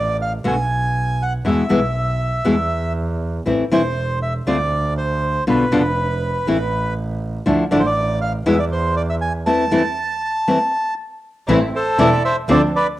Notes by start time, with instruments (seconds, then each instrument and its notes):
Already playing: double bass A1, bandoneon D5
0.22 bandoneon F5
0.44 double bass B1, nylon-string guitar B2 D3 A3 B3 F#4, bandoneon G#5
1.23 bandoneon F#5
1.45 double bass E2, nylon-string guitar B2 E3 G#3 B3 E4, bandoneon E5
1.69 double bass B1, nylon-string guitar B2 E3 G#3 B3 E4
2.45 double bass E2, nylon-string guitar B2 E3 G#3 B3 E4
3.46 double bass A1, nylon-string guitar E3 A3 C4 E4
3.70 double bass E1, nylon-string guitar E3 A3 C4 E4, bandoneon C5
4.22 bandoneon E5
4.47 double bass D2, nylon-string guitar D3 A3 C4 F4, bandoneon D5
4.98 bandoneon C5
5.47 double bass B1, nylon-string guitar B2 D3 B3 D4 F4, bandoneon B4
5.72 double bass F1, nylon-string guitar B2 D3 B3 D4 F4
6.47 double bass A1, nylon-string guitar E3 A3 C4 E4
7.46 double bass D2, nylon-string guitar D3 F3 A3 D4 E4
7.71 double bass A1, nylon-string guitar D3 F3 A3 D4 E4, bandoneon D5
7.80 bandoneon C5
7.86 bandoneon D5
8.21 bandoneon F5
8.46 double bass E2, nylon-string guitar B2 E3 G#3 B3 E4, bandoneon E5
8.59 bandoneon D5
8.72 bandoneon C5
8.96 bandoneon D5
9.10 bandoneon E5
9.21 bandoneon G#5
9.46 nylon-string guitar E3 A3 C4 E4, bandoneon A5
9.71 nylon-string guitar E3 A3 C4 E4
10.48 nylon-string guitar E3 A3 C4 E4
11.48 double bass A1, nylon-string guitar E3 A3 C4 E4, string section A3 C4 E4
11.76 bandoneon A4 C5
11.98 double bass E1, nylon-string guitar E3 A3 C4 E4, string section A3 C4 E4, bandoneon A4 D5
12.25 bandoneon C5 E5
12.48 double bass D2, nylon-string guitar D3 A3 C4 F4, string section F3 C4 D4, bandoneon A4 D5
12.76 bandoneon B4 D5